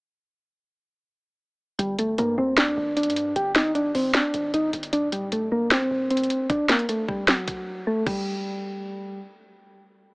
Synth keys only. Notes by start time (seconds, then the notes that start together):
1.79 G3
1.99 A3
2.18 A#3
2.38 C4
2.57 D4
2.96 D4
3.36 G4
3.56 D#4
3.75 D4
3.95 C4
4.14 D4
4.54 D#4
4.93 D4
5.12 G3
5.32 A3
5.52 A#3
5.71 C4
6.11 C4
6.50 D4
6.69 A#3
6.89 A3
7.08 G3
7.28 F#3
7.87 A3
8.06 G3